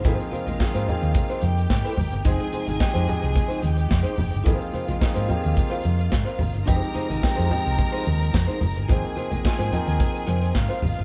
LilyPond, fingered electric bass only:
\new Staff \with { instrumentName = "Fingered electric bass" } { \clef bass \time 4/4 \key aes \major \tempo 4 = 108 aes,,16 r8 bes,,16 r16 aes,16 r16 ees,16 r8 f,8 aes,16 r16 aes,,16 g,,16 | f,,16 r8 aes,,16 r16 f,16 r16 c,16 r8 ees,8 f,16 r16 f,,16 g,,16 | aes,,16 r8 bes,,16 r16 aes,16 r16 ees,16 r8 f,8 aes,16 r16 aes,,16 g,,16 | f,,16 r8 aes,,16 r16 f,16 r16 c,16 r8 ees,8 f,16 r16 f,,16 g,,16 |
aes,,16 r8 bes,,16 r16 aes,16 r16 ees,16 r8 f,8 aes,16 r16 aes,,16 g,,16 | }